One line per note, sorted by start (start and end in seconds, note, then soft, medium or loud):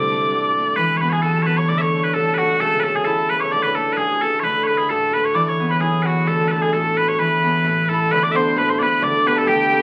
0.00 0.25 D2 loud
0.00 0.81 D3 medium
0.00 1.52 D4 medium
0.00 1.33 E4 medium
0.00 2.02 E4 medium
0.00 1.18 G4 medium
0.00 1.18 A4 medium
0.00 0.84 C5 medium
0.00 0.76 D5 medium
0.00 1.64 D5 medium
0.00 0.51 D6 medium
0.11 0.56 A3 medium
0.30 0.71 A1 medium
0.30 1.23 F#4 soft
0.57 1.94 A3 soft
0.76 1.16 E1 medium
0.76 1.73 E3 medium
0.76 0.97 B4 loud
0.76 1.01 B4 medium
0.76 0.99 B5 medium
0.97 1.01 C#5 medium
0.97 1.14 B5 medium
1.01 1.47 B3 medium
1.01 1.10 B4 medium
1.01 1.47 B4 medium
1.10 1.29 G#4 medium
1.10 1.22 G#4 medium
1.10 1.13 C#5 medium
1.10 1.23 G#5 medium
1.22 1.62 B1 loud
1.22 3.67 F#4 medium
1.22 1.42 A4 medium
1.22 2.15 A4 medium
1.22 1.60 A5 medium
1.42 1.46 C#5 medium
1.46 4.58 B3 soft
1.46 1.57 B4 medium
1.46 2.05 B4 medium
1.57 1.68 C#5 medium
1.57 1.75 C#5 medium
1.57 1.70 C#6 medium
1.67 2.08 D2 medium
1.67 2.15 D3 medium
1.67 1.78 D5 loud
1.67 1.87 D5 medium
1.67 1.82 D6 medium
1.78 2.04 C#5 medium
1.78 3.44 C#5 medium
1.78 1.81 E5 medium
1.78 2.14 C#6 medium
1.95 2.40 A3 medium
2.04 2.14 B4 medium
2.04 3.33 B4 medium
2.13 2.54 A1 loud
2.13 2.65 D3 soft
2.13 2.34 A4 medium
2.13 2.61 A4 medium
2.13 2.40 A5 medium
2.34 2.60 F#4 medium
2.34 2.38 B4 medium
2.38 2.85 A3 soft
2.38 4.84 F#4 medium
2.38 2.59 F#5 medium
2.60 3.00 C#2 loud
2.60 3.57 C#3 medium
2.60 2.80 A4 loud
2.60 2.84 A4 medium
2.60 2.83 A5 medium
2.80 2.96 A4 medium
2.80 2.83 B4 medium
2.80 2.97 A5 medium
2.85 3.31 A3 medium
2.85 3.03 A4 medium
2.95 3.05 G#4 medium
2.95 3.14 G#4 medium
2.95 3.07 G#5 medium
3.05 3.46 E2 loud
3.05 5.67 E4 medium
3.05 3.30 A4 medium
3.05 4.06 A4 medium
3.05 3.32 A5 medium
3.30 3.76 A3 medium
3.30 3.40 B4 medium
3.30 3.66 B4 medium
3.30 3.38 B5 medium
3.39 3.51 C#5 medium
3.39 3.54 C#6 medium
3.39 3.44 D6 medium
3.44 3.60 C#5 medium
3.51 3.92 D2 medium
3.51 4.42 D3 medium
3.51 3.62 D5 loud
3.51 5.36 D5 medium
3.51 3.67 D6 medium
3.62 3.75 B4 medium
3.62 3.79 B5 medium
3.67 4.45 B4 medium
3.75 4.23 A3 medium
3.75 3.93 A4 medium
3.75 4.00 A5 medium
3.93 3.97 B4 medium
3.97 4.37 A1 loud
3.97 4.89 F#4 soft
3.97 4.21 G#4 medium
3.97 4.05 G#4 medium
3.97 4.25 G#5 medium
4.05 4.12 G#4 medium
4.12 4.29 G#4 medium
4.21 4.68 A3 soft
4.21 4.40 A4 medium
4.21 4.87 A4 medium
4.21 4.44 A5 medium
4.40 4.83 D2 medium
4.40 5.40 D3 medium
4.40 4.63 B4 medium
4.40 4.44 C#5 medium
4.44 4.70 B4 medium
4.44 4.67 B5 medium
4.63 4.78 B4 medium
4.63 4.67 C#5 medium
4.68 5.13 A3 medium
4.68 5.15 B4 medium
4.68 4.92 B5 medium
4.78 4.90 G#4 medium
4.78 4.96 G#4 medium
4.89 5.29 A1 loud
4.89 6.73 F#4 medium
4.89 5.14 A4 medium
4.89 5.89 A4 medium
4.89 5.13 A5 medium
5.14 6.50 A3 soft
5.14 5.25 B4 medium
5.14 5.71 B4 medium
5.14 5.25 B5 medium
5.24 5.35 C#5 medium
5.24 5.35 C#6 medium
5.34 5.75 E2 medium
5.34 6.32 E3 medium
5.34 5.48 D5 medium
5.34 5.55 D5 medium
5.34 5.46 D6 medium
5.46 5.71 C#5 medium
5.46 7.08 C#5 medium
5.46 5.68 C#6 medium
5.60 6.05 B3 medium
5.69 5.81 B4 medium
5.69 6.97 B4 medium
5.69 5.79 B5 medium
5.80 6.21 B1 loud
5.80 7.89 E4 medium
5.80 6.03 G#4 medium
5.80 6.33 G#4 medium
5.80 6.06 G#5 medium
6.03 7.43 B3 soft
6.03 6.28 F#4 medium
6.03 6.06 B4 medium
6.03 6.26 F#5 medium
6.07 8.50 F#4 medium
6.26 6.67 D2 loud
6.26 7.24 D3 medium
6.26 6.52 A4 medium
6.26 6.48 A4 medium
6.26 6.49 A5 medium
6.48 6.98 A3 medium
6.48 6.62 A4 medium
6.48 6.51 B4 medium
6.48 6.63 A5 medium
6.52 6.69 A4 medium
6.62 6.73 G#4 medium
6.62 6.79 G#4 medium
6.62 6.74 G#5 medium
6.72 7.13 A1 loud
6.72 8.35 F#4 soft
6.72 7.89 A4 medium
6.72 6.97 A4 medium
6.72 6.97 A5 medium
6.97 7.64 A3 medium
6.97 7.08 B4 medium
6.97 7.19 B4 medium
6.97 7.10 B5 medium
7.08 8.28 C#5 medium
7.08 7.19 C#5 medium
7.08 7.20 C#6 medium
7.18 7.58 E2 medium
7.18 7.69 E3 medium
7.18 7.89 B4 medium
7.18 7.63 B5 medium
7.43 8.34 B3 medium
7.64 8.04 A1 loud
7.64 8.56 A3 medium
7.89 9.82 E4 soft
7.89 8.12 A4 medium
7.89 9.36 A4 medium
7.89 7.96 A5 medium
7.94 8.01 B5 soft
8.00 8.10 A5 medium
8.11 8.50 D2 loud
8.11 9.00 D3 medium
8.11 8.41 B4 medium
8.11 8.23 B4 loud
8.11 8.25 B5 medium
8.22 9.02 D5 medium
8.22 8.31 D5 medium
8.22 8.38 D6 medium
8.31 8.79 B3 medium
8.31 8.79 D4 medium
8.31 8.80 F#4 medium
8.31 8.62 C5 medium
8.31 8.36 E5 medium
8.36 8.58 C5 medium
8.36 8.56 C6 medium
8.56 8.77 A1 medium
8.56 9.25 A3 medium
8.56 8.74 B4 medium
8.56 8.70 B4 medium
8.56 8.71 B5 medium
8.68 8.87 C5 medium
8.68 8.79 C5 medium
8.68 8.81 C6 medium
8.79 9.25 B3 soft
8.79 9.82 D4 medium
8.79 9.32 F#4 medium
8.79 9.26 B4 medium
8.79 9.03 B4 medium
8.79 8.83 D5 medium
8.79 9.04 B5 medium
9.01 9.42 D2 loud
9.01 9.46 D3 medium
9.01 9.82 D5 medium
9.01 9.27 D5 loud
9.01 9.28 D6 medium
9.25 9.72 A3 medium
9.25 9.72 B3 medium
9.25 9.72 G4 medium
9.25 9.82 B4 medium
9.25 9.38 B4 medium
9.25 9.38 B5 medium
9.36 9.82 A4 medium
9.36 9.48 A4 medium
9.36 9.47 A5 medium
9.46 9.68 D2 loud
9.46 9.82 D3 medium
9.46 9.82 G4 medium
9.46 9.82 G5 medium
9.72 9.82 A3 soft
9.72 9.82 B3 soft
9.72 9.82 G4 medium